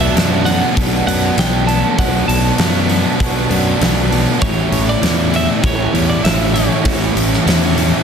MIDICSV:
0, 0, Header, 1, 7, 480
1, 0, Start_track
1, 0, Tempo, 607903
1, 1568, Time_signature, 4, 2, 24, 8
1, 6340, End_track
2, 0, Start_track
2, 0, Title_t, "Clean electric guitar"
2, 0, Program_c, 0, 27
2, 6, Note_on_c, 0, 76, 80
2, 356, Note_off_c, 0, 76, 0
2, 359, Note_on_c, 0, 78, 102
2, 838, Note_off_c, 0, 78, 0
2, 847, Note_on_c, 0, 78, 94
2, 1071, Note_off_c, 0, 78, 0
2, 1098, Note_on_c, 0, 79, 98
2, 1318, Note_off_c, 0, 79, 0
2, 1321, Note_on_c, 0, 81, 101
2, 1567, Note_off_c, 0, 81, 0
2, 1571, Note_on_c, 0, 78, 101
2, 1797, Note_off_c, 0, 78, 0
2, 1800, Note_on_c, 0, 81, 93
2, 2733, Note_off_c, 0, 81, 0
2, 3489, Note_on_c, 0, 73, 90
2, 3823, Note_off_c, 0, 73, 0
2, 3864, Note_on_c, 0, 74, 94
2, 4227, Note_off_c, 0, 74, 0
2, 4232, Note_on_c, 0, 76, 99
2, 4348, Note_off_c, 0, 76, 0
2, 4348, Note_on_c, 0, 74, 97
2, 4461, Note_off_c, 0, 74, 0
2, 4464, Note_on_c, 0, 73, 90
2, 4792, Note_off_c, 0, 73, 0
2, 4814, Note_on_c, 0, 74, 83
2, 4923, Note_off_c, 0, 74, 0
2, 4931, Note_on_c, 0, 76, 101
2, 5160, Note_off_c, 0, 76, 0
2, 5163, Note_on_c, 0, 73, 83
2, 6340, Note_off_c, 0, 73, 0
2, 6340, End_track
3, 0, Start_track
3, 0, Title_t, "Overdriven electric guitar"
3, 0, Program_c, 1, 29
3, 0, Note_on_c, 1, 47, 86
3, 0, Note_on_c, 1, 54, 87
3, 0, Note_on_c, 1, 59, 97
3, 0, Note_on_c, 1, 62, 91
3, 115, Note_off_c, 1, 47, 0
3, 118, Note_on_c, 1, 47, 74
3, 125, Note_off_c, 1, 54, 0
3, 128, Note_on_c, 1, 54, 81
3, 130, Note_off_c, 1, 59, 0
3, 134, Note_on_c, 1, 59, 79
3, 143, Note_off_c, 1, 62, 0
3, 147, Note_on_c, 1, 62, 87
3, 588, Note_off_c, 1, 47, 0
3, 595, Note_off_c, 1, 54, 0
3, 597, Note_on_c, 1, 47, 84
3, 604, Note_on_c, 1, 54, 101
3, 606, Note_off_c, 1, 59, 0
3, 615, Note_on_c, 1, 59, 91
3, 616, Note_off_c, 1, 62, 0
3, 625, Note_on_c, 1, 62, 96
3, 833, Note_off_c, 1, 62, 0
3, 842, Note_on_c, 1, 62, 66
3, 846, Note_off_c, 1, 59, 0
3, 855, Note_on_c, 1, 59, 69
3, 856, Note_off_c, 1, 54, 0
3, 865, Note_on_c, 1, 54, 51
3, 1083, Note_off_c, 1, 47, 0
3, 1304, Note_off_c, 1, 62, 0
3, 1313, Note_on_c, 1, 62, 73
3, 1323, Note_off_c, 1, 59, 0
3, 1332, Note_off_c, 1, 54, 0
3, 1333, Note_on_c, 1, 59, 71
3, 1341, Note_on_c, 1, 54, 59
3, 1553, Note_on_c, 1, 47, 96
3, 1557, Note_off_c, 1, 54, 0
3, 1563, Note_off_c, 1, 59, 0
3, 1567, Note_on_c, 1, 54, 100
3, 1572, Note_on_c, 1, 59, 91
3, 1577, Note_off_c, 1, 62, 0
3, 1586, Note_on_c, 1, 62, 106
3, 2037, Note_off_c, 1, 47, 0
3, 2043, Note_off_c, 1, 54, 0
3, 2046, Note_on_c, 1, 47, 76
3, 2053, Note_on_c, 1, 54, 88
3, 2055, Note_off_c, 1, 59, 0
3, 2061, Note_off_c, 1, 62, 0
3, 2065, Note_on_c, 1, 59, 76
3, 2070, Note_on_c, 1, 62, 78
3, 2510, Note_off_c, 1, 47, 0
3, 2519, Note_on_c, 1, 47, 87
3, 2524, Note_off_c, 1, 54, 0
3, 2533, Note_off_c, 1, 59, 0
3, 2533, Note_on_c, 1, 54, 100
3, 2537, Note_off_c, 1, 62, 0
3, 2542, Note_on_c, 1, 59, 99
3, 2547, Note_on_c, 1, 62, 102
3, 2757, Note_off_c, 1, 62, 0
3, 2766, Note_off_c, 1, 59, 0
3, 2767, Note_on_c, 1, 62, 77
3, 2775, Note_on_c, 1, 59, 65
3, 2779, Note_off_c, 1, 54, 0
3, 2789, Note_on_c, 1, 54, 52
3, 3004, Note_off_c, 1, 47, 0
3, 3230, Note_off_c, 1, 62, 0
3, 3239, Note_on_c, 1, 62, 76
3, 3247, Note_off_c, 1, 59, 0
3, 3256, Note_off_c, 1, 54, 0
3, 3256, Note_on_c, 1, 59, 71
3, 3265, Note_on_c, 1, 54, 59
3, 3469, Note_on_c, 1, 45, 96
3, 3470, Note_off_c, 1, 62, 0
3, 3478, Note_off_c, 1, 59, 0
3, 3482, Note_off_c, 1, 54, 0
3, 3482, Note_on_c, 1, 52, 99
3, 3491, Note_on_c, 1, 55, 86
3, 3492, Note_on_c, 1, 61, 98
3, 3500, Note_on_c, 1, 64, 98
3, 3944, Note_off_c, 1, 52, 0
3, 3947, Note_on_c, 1, 52, 86
3, 3957, Note_off_c, 1, 55, 0
3, 3960, Note_on_c, 1, 55, 82
3, 3968, Note_off_c, 1, 61, 0
3, 3971, Note_on_c, 1, 61, 77
3, 3978, Note_off_c, 1, 64, 0
3, 3981, Note_on_c, 1, 64, 85
3, 4433, Note_off_c, 1, 45, 0
3, 4436, Note_on_c, 1, 45, 96
3, 4443, Note_off_c, 1, 52, 0
3, 4445, Note_off_c, 1, 55, 0
3, 4446, Note_on_c, 1, 52, 98
3, 4448, Note_on_c, 1, 55, 100
3, 4452, Note_off_c, 1, 61, 0
3, 4455, Note_on_c, 1, 61, 106
3, 4461, Note_off_c, 1, 64, 0
3, 4464, Note_on_c, 1, 64, 107
3, 4684, Note_off_c, 1, 64, 0
3, 4687, Note_on_c, 1, 64, 71
3, 4697, Note_off_c, 1, 61, 0
3, 4700, Note_on_c, 1, 61, 66
3, 4711, Note_off_c, 1, 55, 0
3, 4714, Note_on_c, 1, 55, 65
3, 5162, Note_off_c, 1, 64, 0
3, 5165, Note_on_c, 1, 64, 81
3, 5178, Note_off_c, 1, 61, 0
3, 5181, Note_on_c, 1, 61, 69
3, 5188, Note_off_c, 1, 55, 0
3, 5192, Note_on_c, 1, 55, 63
3, 5215, Note_off_c, 1, 45, 0
3, 5402, Note_off_c, 1, 55, 0
3, 5405, Note_on_c, 1, 45, 97
3, 5406, Note_off_c, 1, 52, 0
3, 5409, Note_on_c, 1, 52, 101
3, 5412, Note_on_c, 1, 55, 89
3, 5413, Note_off_c, 1, 61, 0
3, 5414, Note_off_c, 1, 64, 0
3, 5422, Note_on_c, 1, 61, 91
3, 5424, Note_on_c, 1, 64, 93
3, 5865, Note_off_c, 1, 52, 0
3, 5874, Note_on_c, 1, 52, 72
3, 5876, Note_off_c, 1, 55, 0
3, 5885, Note_on_c, 1, 55, 72
3, 5886, Note_off_c, 1, 61, 0
3, 5890, Note_off_c, 1, 64, 0
3, 5895, Note_on_c, 1, 61, 77
3, 5900, Note_on_c, 1, 64, 87
3, 6127, Note_off_c, 1, 45, 0
3, 6340, Note_off_c, 1, 52, 0
3, 6340, Note_off_c, 1, 55, 0
3, 6340, Note_off_c, 1, 61, 0
3, 6340, Note_off_c, 1, 64, 0
3, 6340, End_track
4, 0, Start_track
4, 0, Title_t, "Clean electric guitar"
4, 0, Program_c, 2, 27
4, 0, Note_on_c, 2, 57, 70
4, 0, Note_on_c, 2, 66, 69
4, 118, Note_off_c, 2, 57, 0
4, 121, Note_on_c, 2, 57, 66
4, 356, Note_off_c, 2, 57, 0
4, 359, Note_on_c, 2, 57, 70
4, 835, Note_off_c, 2, 57, 0
4, 839, Note_on_c, 2, 57, 66
4, 1073, Note_off_c, 2, 57, 0
4, 1076, Note_on_c, 2, 57, 67
4, 1316, Note_off_c, 2, 57, 0
4, 1319, Note_on_c, 2, 57, 60
4, 1447, Note_off_c, 2, 66, 0
4, 1554, Note_off_c, 2, 57, 0
4, 1557, Note_on_c, 2, 57, 64
4, 2038, Note_off_c, 2, 57, 0
4, 2041, Note_on_c, 2, 57, 66
4, 2282, Note_off_c, 2, 57, 0
4, 2285, Note_on_c, 2, 57, 65
4, 2525, Note_on_c, 2, 66, 75
4, 2753, Note_off_c, 2, 57, 0
4, 2757, Note_on_c, 2, 57, 64
4, 2989, Note_off_c, 2, 57, 0
4, 2992, Note_on_c, 2, 57, 70
4, 3232, Note_off_c, 2, 57, 0
4, 3235, Note_on_c, 2, 57, 65
4, 3468, Note_on_c, 2, 52, 69
4, 3487, Note_off_c, 2, 66, 0
4, 3950, Note_off_c, 2, 52, 0
4, 3954, Note_on_c, 2, 52, 67
4, 4196, Note_off_c, 2, 57, 0
4, 4199, Note_on_c, 2, 57, 68
4, 4443, Note_on_c, 2, 67, 82
4, 4676, Note_off_c, 2, 57, 0
4, 4680, Note_on_c, 2, 57, 68
4, 4923, Note_off_c, 2, 52, 0
4, 4927, Note_on_c, 2, 52, 69
4, 5153, Note_off_c, 2, 57, 0
4, 5163, Note_on_c, 2, 57, 64
4, 5390, Note_off_c, 2, 52, 0
4, 5399, Note_on_c, 2, 52, 65
4, 5646, Note_off_c, 2, 67, 0
4, 5871, Note_off_c, 2, 52, 0
4, 5881, Note_on_c, 2, 52, 73
4, 6108, Note_off_c, 2, 57, 0
4, 6117, Note_on_c, 2, 57, 74
4, 6340, Note_off_c, 2, 52, 0
4, 6340, Note_off_c, 2, 57, 0
4, 6340, End_track
5, 0, Start_track
5, 0, Title_t, "Distorted electric guitar"
5, 0, Program_c, 3, 30
5, 360, Note_on_c, 3, 59, 71
5, 380, Note_on_c, 3, 54, 56
5, 595, Note_off_c, 3, 54, 0
5, 607, Note_off_c, 3, 59, 0
5, 1080, Note_on_c, 3, 47, 72
5, 1093, Note_on_c, 3, 54, 83
5, 1098, Note_on_c, 3, 59, 80
5, 1309, Note_off_c, 3, 59, 0
5, 1328, Note_off_c, 3, 54, 0
5, 1555, Note_off_c, 3, 47, 0
5, 2282, Note_on_c, 3, 59, 76
5, 2300, Note_on_c, 3, 54, 57
5, 2521, Note_off_c, 3, 54, 0
5, 2530, Note_off_c, 3, 59, 0
5, 2994, Note_on_c, 3, 47, 68
5, 3002, Note_on_c, 3, 54, 76
5, 3013, Note_on_c, 3, 59, 86
5, 3221, Note_off_c, 3, 59, 0
5, 3241, Note_off_c, 3, 54, 0
5, 3467, Note_off_c, 3, 47, 0
5, 3490, Note_on_c, 3, 57, 103
5, 4191, Note_off_c, 3, 57, 0
5, 4194, Note_on_c, 3, 57, 65
5, 4215, Note_on_c, 3, 52, 56
5, 4443, Note_off_c, 3, 52, 0
5, 4454, Note_off_c, 3, 57, 0
5, 4457, Note_on_c, 3, 57, 107
5, 4915, Note_on_c, 3, 45, 75
5, 4929, Note_on_c, 3, 52, 75
5, 4932, Note_off_c, 3, 57, 0
5, 4936, Note_on_c, 3, 57, 87
5, 5154, Note_off_c, 3, 57, 0
5, 5157, Note_on_c, 3, 57, 67
5, 5176, Note_off_c, 3, 52, 0
5, 5179, Note_on_c, 3, 52, 57
5, 5388, Note_off_c, 3, 45, 0
5, 5391, Note_off_c, 3, 52, 0
5, 5397, Note_off_c, 3, 57, 0
5, 5407, Note_on_c, 3, 57, 94
5, 6117, Note_off_c, 3, 57, 0
5, 6127, Note_on_c, 3, 57, 71
5, 6144, Note_on_c, 3, 52, 64
5, 6340, Note_off_c, 3, 52, 0
5, 6340, Note_off_c, 3, 57, 0
5, 6340, End_track
6, 0, Start_track
6, 0, Title_t, "Fingered electric bass"
6, 0, Program_c, 4, 33
6, 128, Note_on_c, 4, 42, 83
6, 479, Note_off_c, 4, 42, 0
6, 609, Note_on_c, 4, 35, 86
6, 784, Note_off_c, 4, 35, 0
6, 846, Note_on_c, 4, 42, 86
6, 1022, Note_off_c, 4, 42, 0
6, 1084, Note_on_c, 4, 35, 85
6, 1436, Note_off_c, 4, 35, 0
6, 1572, Note_on_c, 4, 35, 91
6, 1746, Note_off_c, 4, 35, 0
6, 1798, Note_on_c, 4, 35, 92
6, 1977, Note_off_c, 4, 35, 0
6, 2039, Note_on_c, 4, 42, 85
6, 2393, Note_off_c, 4, 42, 0
6, 2528, Note_on_c, 4, 35, 95
6, 2703, Note_off_c, 4, 35, 0
6, 2765, Note_on_c, 4, 42, 83
6, 2942, Note_off_c, 4, 42, 0
6, 3006, Note_on_c, 4, 35, 96
6, 3358, Note_off_c, 4, 35, 0
6, 3491, Note_on_c, 4, 33, 93
6, 3665, Note_off_c, 4, 33, 0
6, 3725, Note_on_c, 4, 33, 89
6, 3901, Note_off_c, 4, 33, 0
6, 3968, Note_on_c, 4, 40, 84
6, 4319, Note_off_c, 4, 40, 0
6, 4449, Note_on_c, 4, 33, 93
6, 4624, Note_off_c, 4, 33, 0
6, 4681, Note_on_c, 4, 40, 90
6, 4859, Note_off_c, 4, 40, 0
6, 4923, Note_on_c, 4, 33, 91
6, 5275, Note_off_c, 4, 33, 0
6, 5409, Note_on_c, 4, 33, 91
6, 5584, Note_off_c, 4, 33, 0
6, 5645, Note_on_c, 4, 33, 82
6, 5822, Note_off_c, 4, 33, 0
6, 5890, Note_on_c, 4, 40, 86
6, 6240, Note_off_c, 4, 40, 0
6, 6340, End_track
7, 0, Start_track
7, 0, Title_t, "Drums"
7, 133, Note_on_c, 9, 46, 60
7, 143, Note_on_c, 9, 38, 105
7, 212, Note_off_c, 9, 46, 0
7, 222, Note_off_c, 9, 38, 0
7, 365, Note_on_c, 9, 46, 45
7, 444, Note_off_c, 9, 46, 0
7, 608, Note_on_c, 9, 46, 69
7, 609, Note_on_c, 9, 36, 105
7, 687, Note_off_c, 9, 46, 0
7, 688, Note_off_c, 9, 36, 0
7, 857, Note_on_c, 9, 46, 55
7, 936, Note_off_c, 9, 46, 0
7, 1089, Note_on_c, 9, 46, 71
7, 1098, Note_on_c, 9, 38, 113
7, 1168, Note_off_c, 9, 46, 0
7, 1177, Note_off_c, 9, 38, 0
7, 1331, Note_on_c, 9, 46, 51
7, 1410, Note_off_c, 9, 46, 0
7, 1568, Note_on_c, 9, 36, 106
7, 1568, Note_on_c, 9, 46, 63
7, 1647, Note_off_c, 9, 36, 0
7, 1647, Note_off_c, 9, 46, 0
7, 1810, Note_on_c, 9, 46, 53
7, 1889, Note_off_c, 9, 46, 0
7, 2040, Note_on_c, 9, 46, 63
7, 2050, Note_on_c, 9, 38, 106
7, 2119, Note_off_c, 9, 46, 0
7, 2129, Note_off_c, 9, 38, 0
7, 2286, Note_on_c, 9, 46, 46
7, 2365, Note_off_c, 9, 46, 0
7, 2529, Note_on_c, 9, 36, 106
7, 2531, Note_on_c, 9, 46, 66
7, 2607, Note_off_c, 9, 36, 0
7, 2610, Note_off_c, 9, 46, 0
7, 2769, Note_on_c, 9, 46, 47
7, 2848, Note_off_c, 9, 46, 0
7, 3012, Note_on_c, 9, 46, 65
7, 3022, Note_on_c, 9, 38, 103
7, 3091, Note_off_c, 9, 46, 0
7, 3101, Note_off_c, 9, 38, 0
7, 3257, Note_on_c, 9, 46, 48
7, 3336, Note_off_c, 9, 46, 0
7, 3487, Note_on_c, 9, 46, 57
7, 3489, Note_on_c, 9, 36, 105
7, 3566, Note_off_c, 9, 46, 0
7, 3568, Note_off_c, 9, 36, 0
7, 3731, Note_on_c, 9, 46, 51
7, 3810, Note_off_c, 9, 46, 0
7, 3972, Note_on_c, 9, 46, 63
7, 3981, Note_on_c, 9, 38, 103
7, 4051, Note_off_c, 9, 46, 0
7, 4060, Note_off_c, 9, 38, 0
7, 4215, Note_on_c, 9, 46, 46
7, 4294, Note_off_c, 9, 46, 0
7, 4450, Note_on_c, 9, 46, 65
7, 4451, Note_on_c, 9, 36, 116
7, 4529, Note_off_c, 9, 46, 0
7, 4530, Note_off_c, 9, 36, 0
7, 4697, Note_on_c, 9, 46, 50
7, 4776, Note_off_c, 9, 46, 0
7, 4935, Note_on_c, 9, 46, 72
7, 4944, Note_on_c, 9, 38, 118
7, 5014, Note_off_c, 9, 46, 0
7, 5023, Note_off_c, 9, 38, 0
7, 5177, Note_on_c, 9, 46, 53
7, 5256, Note_off_c, 9, 46, 0
7, 5410, Note_on_c, 9, 46, 68
7, 5413, Note_on_c, 9, 36, 94
7, 5489, Note_off_c, 9, 46, 0
7, 5492, Note_off_c, 9, 36, 0
7, 5661, Note_on_c, 9, 46, 58
7, 5740, Note_off_c, 9, 46, 0
7, 5791, Note_on_c, 9, 38, 30
7, 5870, Note_off_c, 9, 38, 0
7, 5902, Note_on_c, 9, 46, 64
7, 5912, Note_on_c, 9, 38, 102
7, 5981, Note_off_c, 9, 46, 0
7, 5991, Note_off_c, 9, 38, 0
7, 6140, Note_on_c, 9, 46, 49
7, 6219, Note_off_c, 9, 46, 0
7, 6340, End_track
0, 0, End_of_file